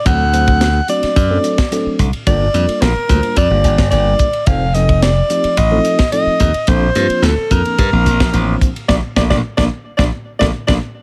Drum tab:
RD |x-xxx-xxx-xxx-xx|x-xxx-xxx-xxx-xx|x-xxx-xxx-xxx-xx|x-xxx-xxx-xxx-xx|
HH |p-p-p-p-p-p-p-p-|p-p-p-p-p-p-p-p-|p-p-p-p-p-p-p-p-|p-p-p-p-p-p-p-p-|
SD |----o--o---oo---|----o------oo---|--o-o------o----|--o-o------o----|
BD |o--o----o--o--o-|o-----o-o--o--o-|o--o----o--o--o-|o-----o-o--o--o-|

RD |----------------|
HH |----------------|
SD |o-oo-o--o--o-o--|
BD |o-oo-o--o--o-o--|